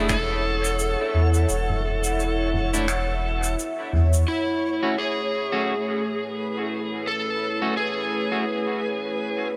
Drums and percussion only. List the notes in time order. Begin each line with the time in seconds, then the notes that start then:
0.09 finger snap, kick, shaker
0.65 shaker
0.79 shaker
1.34 shaker
1.49 shaker
1.70 mid tom
2.04 shaker
2.20 shaker
2.54 mid tom
2.74 shaker
2.88 finger snap, shaker
3.43 shaker
3.59 shaker
3.93 mid tom
4.14 shaker